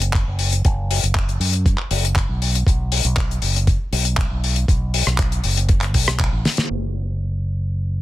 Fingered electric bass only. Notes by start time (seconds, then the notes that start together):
Already playing: F#1
0.27 F#1
0.65 F#1
1.03 F#1
1.40 F#2
1.91 F#1
2.29 B1
2.67 B1
3.04 B1
3.42 F#1
3.92 B1
4.31 B1
5.07 B1
5.44 F#1
5.95 B1
6.33 A1
6.70 F#1